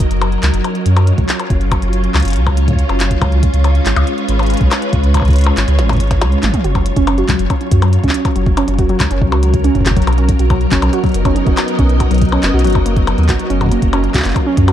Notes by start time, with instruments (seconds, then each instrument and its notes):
Already playing: string machine F#3 D#4 A#4 D#5
0.00 kick, closed hi-hat
0.11 sub bass F#1, string machine C#4, closed hi-hat
0.21 string machine C#5, closed hi-hat, percussion blips
0.32 closed hi-hat
0.40 sub bass C#2, string machine F4, clap, closed hi-hat
0.54 sub bass F#1, closed hi-hat
0.64 closed hi-hat, percussion blips
0.75 closed hi-hat
0.86 sub bass F#2, closed hi-hat
0.97 closed hi-hat, percussion blips
1.07 closed hi-hat
1.18 sub bass C#2, kick, closed hi-hat
1.29 clap, closed hi-hat
1.39 closed hi-hat, percussion blips
1.50 sub bass F#1, kick, closed hi-hat
1.61 closed hi-hat
1.72 kick, closed hi-hat, percussion blips
1.82 sub bass F#1, closed hi-hat
1.93 closed hi-hat
2.04 closed hi-hat
2.14 sub bass C#2, clap, closed hi-hat, percussion blips
2.17 closed hi-hat
2.20 closed hi-hat
2.23 sub bass F#1, closed hi-hat
2.25 closed hi-hat
2.28 closed hi-hat
2.30 closed hi-hat
2.33 closed hi-hat
2.36 sub bass C#2, closed hi-hat
2.47 kick, closed hi-hat, percussion blips
2.57 closed hi-hat
2.68 kick, closed hi-hat
2.71 kick
2.73 kick
2.76 kick, closed hi-hat
2.89 sub bass F#1, closed hi-hat, percussion blips
3.00 clap, closed hi-hat
3.11 kick, closed hi-hat
3.22 sub bass C#2, string machine G#3, kick, closed hi-hat, percussion blips
3.32 closed hi-hat
3.43 kick, closed hi-hat
3.54 sub bass C#2, closed hi-hat
3.64 closed hi-hat, percussion blips
3.75 string machine B4, closed hi-hat
3.86 sub bass G#1, clap, closed hi-hat
3.96 sub bass C#2, closed hi-hat, percussion blips
4.07 closed hi-hat
4.18 closed hi-hat
4.29 sub bass G#1, closed hi-hat
4.39 closed hi-hat, percussion blips
4.43 closed hi-hat
4.46 closed hi-hat
4.50 closed hi-hat
4.54 closed hi-hat
4.57 closed hi-hat
4.61 sub bass B1, kick, closed hi-hat
4.71 clap, closed hi-hat, percussion blips
4.82 closed hi-hat
4.93 sub bass C#2, kick, closed hi-hat
5.04 closed hi-hat
5.14 kick, closed hi-hat, percussion blips
5.17 percussion blips
5.20 kick, percussion blips
5.22 sub bass C#2, closed hi-hat, percussion blips
5.28 kick, closed hi-hat
5.30 closed hi-hat
5.33 closed hi-hat
5.36 closed hi-hat
5.38 closed hi-hat
5.41 closed hi-hat
5.44 closed hi-hat, percussion blips
5.57 sub bass G#1, clap, closed hi-hat
5.68 sub bass C#2, closed hi-hat
5.79 sub bass G#1, snare, closed hi-hat
5.89 kick, snare, closed hi-hat, percussion blips
5.92 kick, closed hi-hat
5.95 kick, closed hi-hat
5.97 kick, closed hi-hat
6.04 closed hi-hat
6.07 snare, closed hi-hat
6.11 kick, closed hi-hat
6.22 sub bass C#2, snare, closed hi-hat, percussion blips
6.32 closed hi-hat
6.43 sub bass G#1, clap, closed hi-hat, mid tom
6.54 kick, closed hi-hat, mid tom
6.64 sub bass F#1, string machine F#3, synth pluck F#4, closed hi-hat
6.75 synth pluck F#3, kick, closed hi-hat, percussion blips
6.86 closed hi-hat
6.96 sub bass F#1, synth pluck C#4, kick, closed hi-hat
7.07 synth pluck C#4, closed hi-hat, percussion blips
7.18 synth pluck F#4, closed hi-hat
7.29 sub bass C#2, synth pluck F#3, kick, clap, closed hi-hat
7.39 sub bass F#1, closed hi-hat
7.50 synth pluck C#4, kick, closed hi-hat, percussion blips
7.61 synth pluck C#4, closed hi-hat
7.71 sub bass F#2, synth pluck F#4, kick, closed hi-hat
7.82 synth pluck F#3, closed hi-hat, percussion blips
7.87 string machine A#4
7.93 closed hi-hat
8.04 sub bass C#2, synth pluck C#4, kick, closed hi-hat
8.09 clap
8.14 synth pluck C#4, closed hi-hat
8.25 synth pluck F#4, kick, closed hi-hat, percussion blips
8.36 sub bass F#1, synth pluck F#3, closed hi-hat
8.46 kick, closed hi-hat
8.57 synth pluck C#4, closed hi-hat, percussion blips
8.68 sub bass F#1, synth pluck C#4, closed hi-hat
8.79 synth pluck F#4, kick, closed hi-hat
8.89 synth pluck F#3, closed hi-hat
9.00 sub bass C#2, kick, clap, closed hi-hat, percussion blips
9.11 sub bass F#1, synth pluck C#4, closed hi-hat
9.22 sub bass C#2, synth pluck C#4, kick
9.32 synth pluck F#4, closed hi-hat, percussion blips
9.43 synth pluck F#3, closed hi-hat
9.54 kick, closed hi-hat
9.64 synth pluck C#4, closed hi-hat
9.75 sub bass F#1, synth pluck C#4, kick, closed hi-hat
9.80 kick
9.86 synth pluck F#4, kick, clap, closed hi-hat
9.91 kick
9.97 synth pluck F#3, kick, closed hi-hat
10.02 closed hi-hat
10.07 sub bass B1, closed hi-hat, percussion blips
10.13 closed hi-hat
10.18 synth pluck C#4, closed hi-hat
10.29 synth pluck C#4, kick, closed hi-hat
10.39 sub bass B1, synth pluck F#4, closed hi-hat
10.44 string machine D#4
10.50 synth pluck F#3, string machine B3, kick, closed hi-hat, percussion blips
10.61 closed hi-hat
10.71 sub bass F#1, synth pluck C#4, string machine D#5, kick, clap, closed hi-hat
10.82 sub bass B1, synth pluck C#4, closed hi-hat, percussion blips
10.93 synth pluck F#4, closed hi-hat
11.04 synth pluck F#3, kick, closed hi-hat
11.06 closed hi-hat
11.09 closed hi-hat
11.12 closed hi-hat
11.14 sub bass F#1, closed hi-hat
11.25 synth pluck C#4, kick, closed hi-hat, percussion blips
11.36 synth pluck C#4, closed hi-hat
11.47 sub bass F#1, synth pluck F#4, kick, closed hi-hat
11.57 synth pluck F#3, clap, closed hi-hat, percussion blips
11.68 closed hi-hat
11.79 sub bass B1, synth pluck C#4, kick, closed hi-hat
11.89 synth pluck C#4, closed hi-hat
12.00 synth pluck F#4, kick, closed hi-hat, percussion blips
12.11 sub bass B1, synth pluck F#3, closed hi-hat
12.14 closed hi-hat
12.18 closed hi-hat
12.22 kick, closed hi-hat
12.25 closed hi-hat
12.29 closed hi-hat
12.32 synth pluck C#4, closed hi-hat, percussion blips
12.43 sub bass F#1, synth pluck C#4, clap, closed hi-hat
12.54 sub bass B1, synth pluck F#4
12.59 closed hi-hat
12.64 sub bass F#1, synth pluck F#3, closed hi-hat
12.67 closed hi-hat
12.70 closed hi-hat
12.73 kick, closed hi-hat, percussion blips
12.86 synth pluck A#3, closed hi-hat
12.97 synth pluck F#3, kick, closed hi-hat
13.07 sub bass F#1, closed hi-hat, percussion blips
13.18 sub bass D#2, synth pluck F#3, closed hi-hat
13.23 closed hi-hat
13.29 sub bass F#1, synth pluck F#4, kick, clap, closed hi-hat
13.34 closed hi-hat
13.39 synth pluck F#3, closed hi-hat
13.50 sub bass F#1, synth pluck C#4, closed hi-hat
13.60 string machine C#4 F4, synth pluck F#4, kick, closed hi-hat, percussion blips
13.64 kick
13.66 kick
13.69 synth pluck A#3, kick, closed hi-hat
13.82 sub bass F#1, kick, closed hi-hat
13.93 synth pluck C#4, closed hi-hat, percussion blips
14.04 synth pluck C#4, closed hi-hat
14.14 sub bass C#2, synth pluck F#4, kick, clap, closed hi-hat
14.17 clap
14.20 clap
14.22 sub bass F#1, synth pluck A#3, clap
14.25 clap, closed hi-hat
14.28 clap
14.31 clap
14.33 kick, clap, closed hi-hat, percussion blips
14.47 synth pluck C#4
14.56 sub bass F#2, synth pluck C#4, string machine C#5, kick, closed hi-hat
14.68 synth pluck F#4, closed hi-hat, percussion blips